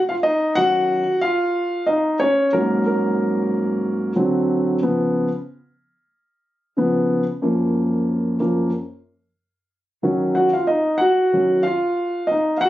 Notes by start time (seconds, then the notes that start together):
0.09 F4 F5
0.23 D#4 D#5
0.55 D#3 F#3 C#4 F#4 F#5
1.21 F4 F5
1.87 D#4 D#5
2.20 C#4 C#5
2.53 G#2 F#3 A#3 C#4 A#4
2.86 A#3 A#4
4.16 D3 F#3 C4
4.82 C#3 F3 B3
6.77 C#3 F3 B3
7.42 F#2 F3 A#3
8.40 F#2 F3 A#3
10.03 D#3 F#3 C#4
10.35 F#4 F#5
10.53 F4 F5
10.67 D#4 D#5
10.98 F#4 F#5
11.32 D#3 F#3 C#4
11.63 F4 F5
12.27 D#5
12.31 D#4
12.57 F5 F#5
12.65 F#4